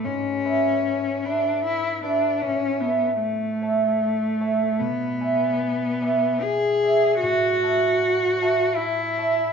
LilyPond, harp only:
\new Staff \with { instrumentName = "Harp" } { \time 3/4 \key a \major \tempo 4 = 75 <gis, b' b''>8 <b' e'' b''>4 <b' e'' b''>4 <b' e'' b''>8 | a,8 <cis'' e'' a''>4 <cis'' e'' a''>4 <cis'' e'' a''>8 | b,8 <d'' e'' gis''>4 <d'' e'' gis''>4 <d'' e'' gis''>8 | a,8 <cis'' e'' a''>4 <cis'' e'' a''>4 <cis'' e'' a''>8 | }